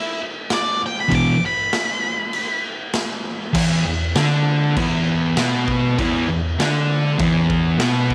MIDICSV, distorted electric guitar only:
0, 0, Header, 1, 2, 480
1, 0, Start_track
1, 0, Tempo, 608519
1, 875, Time_signature, 4, 2, 24, 8
1, 6425, End_track
2, 0, Start_track
2, 0, Title_t, "Distorted electric guitar"
2, 0, Program_c, 0, 30
2, 856, Note_on_c, 0, 40, 84
2, 865, Note_on_c, 0, 47, 95
2, 869, Note_on_c, 0, 52, 100
2, 1058, Note_off_c, 0, 40, 0
2, 1062, Note_off_c, 0, 47, 0
2, 1064, Note_off_c, 0, 52, 0
2, 2786, Note_on_c, 0, 40, 96
2, 2800, Note_on_c, 0, 52, 103
2, 3024, Note_off_c, 0, 40, 0
2, 3031, Note_off_c, 0, 52, 0
2, 3042, Note_on_c, 0, 40, 78
2, 3231, Note_off_c, 0, 40, 0
2, 3278, Note_on_c, 0, 50, 93
2, 3284, Note_on_c, 0, 62, 109
2, 3750, Note_off_c, 0, 50, 0
2, 3753, Note_off_c, 0, 62, 0
2, 3756, Note_on_c, 0, 40, 93
2, 3773, Note_on_c, 0, 52, 115
2, 4229, Note_off_c, 0, 40, 0
2, 4229, Note_on_c, 0, 47, 87
2, 4237, Note_off_c, 0, 52, 0
2, 4238, Note_on_c, 0, 59, 94
2, 4705, Note_off_c, 0, 47, 0
2, 4709, Note_off_c, 0, 59, 0
2, 4720, Note_on_c, 0, 40, 99
2, 4733, Note_on_c, 0, 52, 96
2, 4950, Note_off_c, 0, 40, 0
2, 4957, Note_off_c, 0, 52, 0
2, 4959, Note_on_c, 0, 40, 84
2, 5149, Note_off_c, 0, 40, 0
2, 5199, Note_on_c, 0, 50, 96
2, 5211, Note_on_c, 0, 62, 105
2, 5661, Note_on_c, 0, 40, 100
2, 5670, Note_off_c, 0, 50, 0
2, 5675, Note_off_c, 0, 62, 0
2, 5676, Note_on_c, 0, 52, 117
2, 6137, Note_on_c, 0, 47, 101
2, 6140, Note_off_c, 0, 40, 0
2, 6147, Note_off_c, 0, 52, 0
2, 6149, Note_on_c, 0, 59, 107
2, 6425, Note_off_c, 0, 47, 0
2, 6425, Note_off_c, 0, 59, 0
2, 6425, End_track
0, 0, End_of_file